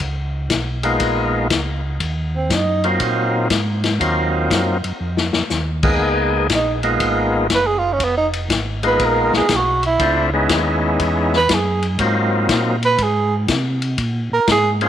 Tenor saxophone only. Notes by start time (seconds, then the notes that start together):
2.36 C4
2.54 D#4
6.37 B3
6.55 D#4
7.55 B4
7.67 G#4
7.78 F4
7.92 C#4
8.04 B3
8.17 D#4
8.87 B4
9.06 A#4
9.36 G#4
9.55 F#4
9.86 E4
11.36 B4
11.54 G#4
12.85 B4
13.03 G#4
14.33 A#4
14.52 G#4